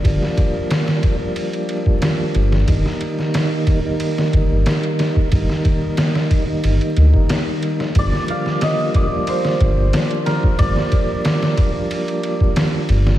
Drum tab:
RD |x-x-x-x-xxx-x-x-|x-x-x-x-x-x-xxx-|x-x-x-x-xxx-x-x-|x-x-x-x-x-x-xxx-|
SD |-o--oo------o--o|-o-oo----o--o-o-|-o--oo------o--o|-o-oo----o--o-o-|
BD |o-o---o----o----|o-----o---o----o|o-o---o----o----|o-----o---o----o|

RD |x-x-x-x-xxx-x-x-|
SD |-o--oo------o--o|
BD |o-o---o----o----|